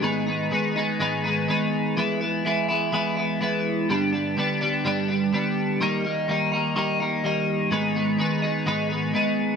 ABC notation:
X:1
M:4/4
L:1/8
Q:1/4=125
K:G#phr
V:1 name="Clean electric guitar"
[G,,D,G,B,D] [G,B,D] [D,G,B,D] [G,B,D] [G,,D,G,B,D] [G,B,D] [D,G,B,D]2 | [E,G,B,E] [G,B,E] [E,G,B,E] [G,B,E] [E,G,B,E] [G,B,E] [E,G,B,E]2 | [=G,,=D,=G,B,=D] [G,B,D] [D,G,B,D] [G,B,D] [G,,D,G,B,D] [G,B,D] [D,G,B,D]2 | [D,=G,^A,D] [G,A,D] [D,G,A,D] [G,A,D] [D,G,A,D] [G,A,D] [D,G,A,D]2 |
[G,,D,G,B,D] [G,B,D] [D,G,B,D] [G,B,D] [G,,D,G,B,D] [G,B,D] [D,G,B,D]2 |]